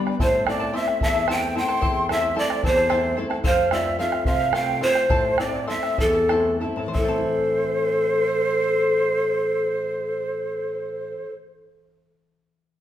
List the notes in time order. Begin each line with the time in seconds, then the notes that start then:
Already playing: G3 B3 D4
0.06 B4 D5 B5, bombo rim
0.20 A2 E4 A4 C5 E5 A5, bombo rim, bombo low
0.46 A3 C4 E4 A4 D5 E5 A5, bombo rim
0.60 E4 A4 A5
0.73 A3 C4 E4 A4 C5 E5 A5
0.88 bombo rim
1.01 E2 E4 A4 E5 A5, bombo low
1.14 E4 A4 A5, bombo rim
1.28 A3 C4 E4 A4 C5 E5 G5 A5, bombo rim
1.55 A3 C4 E4 A4 E5 G5 A5 C6, bombo rim
1.68 E4 A4 A5, bombo rim
1.81 E2 E4 A4 C5 E5 A5, bombo rim, bombo low
2.09 A3 C4 E4 A4 E5 A5, bombo rim
2.21 E4 A4 A5
2.35 A3 C4 E4 A4 C5 D5 E5 A5
2.50 bombo rim
2.63 E2 E4 A4 C5 E5 A5, bombo low
2.77 E4 A4 A5, bombo rim
2.89 A3 C4 E4 A4 C5 E5 A5, bombo rim
3.17 A3 C4 E4 A4 E5 A5, bombo rim
3.30 E4 A4 A5, bombo rim
3.44 F2 A4 C5 F5, bombo rim, bombo low
3.71 A3 C4 F4 A4 C5 D5 E5 F5, bombo rim
3.84 C5 F5
3.98 A3 C4 F4 A4 C5 E5 F5
4.12 bombo rim
4.25 C3 A4 C5 E5 F5, bombo low
4.39 C5 F5, bombo rim
4.52 A3 C4 F4 A4 C5 F5 G5, bombo rim
4.81 A3 C4 F4 A4 C5 F5, bombo rim
4.95 C5 F5, bombo rim
5.10 A2 E4 A4 C5 E5 A5, bombo rim, bombo low
5.24 bombo rim
5.38 A3 C4 E4 A4 D5 E5 A5, bombo rim
5.53 E4 A4 A5, bombo rim
5.67 A3 C4 E4 A4 C5 E5 A5
5.83 bombo rim
5.98 E2 E4 A4 E5 A5, bombo rim, bombo low
6.14 E4 A4 A5, bombo rim
6.29 A3 C4 E4 A4 C5 E5 A5, bombo rim
6.46 bombo rim
6.60 A3 C4 E4 A4 E5 A5, bombo rim
6.76 A2 E4 A4 A5
6.86 E3 C5
6.94 A3 A4 C5 E5, bombo low
6.99 E4
7.04 C4 A4
7.08 A5
7.18 E4